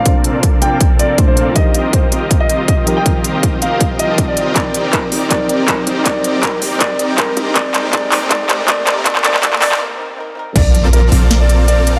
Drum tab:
CC |----------------|----------------|----------------|----------------|
HH |x-x-x-x-x-x-x-x-|x-x-x-x-x-x-x-x-|x-x-x-x-x-x-x-x-|x-x-x-o-x-x-x-x-|
CP |----------------|----------------|----------------|x---x---x---x---|
SD |----------------|----------------|----------------|----------------|
BD |o---o---o---o---|o---o---o---o---|o---o---o---o---|o---o---o---o---|

CC |----------------|----------------|----------------|x---------------|
HH |x-x-x-o-x-x-x-x-|x-x-x-o-x-x-x-x-|x-x-x-o---------|x-x-x-o-x-x-x-x-|
CP |x---x---x---x---|x-x-x-x-x-x-x-x-|xxxxxxxx--------|----------------|
SD |----------------|----------------|----------------|--------o-------|
BD |o---o---o---o---|o---o---o---o---|o---o-----------|o---------------|